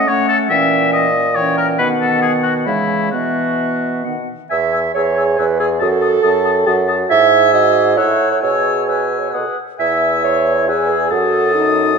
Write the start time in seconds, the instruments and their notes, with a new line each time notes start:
Already playing: bassoon A2
0.08 french horn A3, clarinet C#4, oboe C#5, flute F#5
0.29 oboe A4
0.50 bassoon A#2, french horn E3, clarinet C#4, oboe E5, flute G5
0.93 oboe D#5
1.36 french horn E3, clarinet C#4, oboe C#5, flute G5
1.58 oboe A#4
1.79 bassoon B2, french horn D#3, clarinet B3, oboe B4, flute F#5
2.01 oboe A4
2.22 oboe G#4
2.43 oboe F#4
2.66 bassoon C#3, french horn E3, clarinet G#3, oboe E4, flute E5
3.11 bassoon B2, french horn E3, clarinet B3, oboe F#4, flute E5
4.04 french horn D#3, clarinet B3, flute F#5
4.50 bassoon E2, clarinet E5, oboe G#5, flute E6
4.72 oboe G#5, flute E6
4.95 bassoon E2, french horn G#4, clarinet C#5, oboe G#5, flute E6
5.15 oboe G#5, flute E6
5.36 bassoon E2, clarinet B4, oboe G#5, flute E6
5.60 clarinet G#4, oboe G#5, flute E6
5.80 bassoon F#2, french horn F#4, clarinet A4, oboe A5, flute D#6
6.01 oboe A5, flute D#6
6.23 bassoon F#2, french horn A4, oboe A5, flute D#6
6.44 oboe A5, flute D#6
6.67 bassoon F#2, french horn F#4, oboe A5, flute D#6
6.88 oboe A5, flute D#6
7.10 bassoon G#2, french horn E4, clarinet E5, oboe G#5, flute E6
7.53 french horn F#4, clarinet D#5
7.97 bassoon A2, french horn E4, clarinet C#5, oboe F#5, flute E6
8.32 clarinet C#5
8.41 bassoon B2, french horn G#4, clarinet C#5, oboe G#5, flute E6
8.87 clarinet B4, oboe G#5, flute E6
9.19 clarinet C#5
9.30 clarinet B4, oboe F#5
9.34 bassoon B2, flute D#6
9.39 clarinet A4
9.49 clarinet B4
9.79 bassoon E2, french horn E4, clarinet E5, oboe G#5, flute E6
10.24 clarinet C#5
10.68 french horn G#4, clarinet B4, oboe G#5, flute E6
10.90 clarinet G#4
11.10 bassoon F#2, french horn F#4, clarinet A4, oboe A5, flute D#6
11.54 french horn D#4